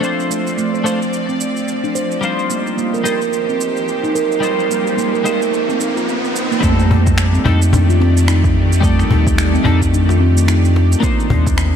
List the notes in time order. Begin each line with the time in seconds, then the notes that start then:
Already playing: F3 C4
0.00 A3 D4 F4 D5, shaker
0.05 C5
0.20 shaker
0.30 A3, shaker
0.47 shaker
0.58 A3, shaker
0.74 C5, shaker
0.84 A3 D4 F4 C5, shaker
1.02 shaker
1.13 shaker
1.29 C4, shaker
1.41 shaker
1.57 shaker
1.68 shaker
1.84 D4, shaker
1.95 C5, shaker
2.11 shaker
2.21 G3 D#4 F4 G4 C5, riser, shaker
2.39 shaker
2.50 A#3, shaker
2.67 shaker
2.77 A#3, shaker
2.94 A#4, shaker
3.04 G3 D#4 F4 A#4 C5, shaker
3.22 shaker
3.33 shaker
3.49 C4, shaker
3.61 shaker
3.77 shaker
3.88 shaker
4.04 D#4, shaker
4.15 A#4, shaker
4.32 shaker
4.40 G3 D#4 F4, shaker
4.44 C5
4.60 shaker
4.70 A#3, shaker
4.87 shaker
4.97 A#3, shaker
5.14 A#4, shaker
5.24 G3 D#4 F4 A#4 C5, shaker
5.42 shaker
5.54 shaker
5.69 C4, shaker
5.80 D#4, shaker
5.96 F4, shaker
6.09 shaker
6.25 shaker
6.36 shaker
6.51 A#3, shaker
6.60 F2 D#3 G3 A3 D4 D#4 G4 D5, kick, cajon slap, shaker
6.65 A4
6.79 shaker
6.91 cajon bass
7.07 kick, shaker
7.18 finger snap, shaker
7.34 C4, shaker
7.45 F2 G3 D4 D#4 A4, cajon bass
7.62 shaker
7.73 D4, cajon bass, shaker
7.89 F4, shaker
8.01 C4, cajon slap
8.17 shaker
8.28 D#4, finger snap, shaker
8.44 kick, cajon slap, shaker
8.72 shaker
8.80 G3 A3 D#4 D5, kick, cajon slap, shaker
8.85 A4
8.99 finger snap, shaker
9.10 D#2, cajon bass
9.27 kick, shaker
9.38 finger snap, shaker
9.54 C4, shaker
9.64 F2 G3 D4 D#4 A4, cajon bass
9.82 kick, shaker
9.93 D4, shaker
10.09 F4, cajon slap, shaker
10.20 C4
10.37 shaker
10.48 D#4, finger snap, shaker
10.65 shaker
10.76 cajon slap
10.92 shaker
11.00 A#3 D4 D#4, kick, cajon slap, shaker
11.04 C5
11.20 shaker
11.30 D#2, cajon bass
11.47 kick, shaker
11.58 finger snap, shaker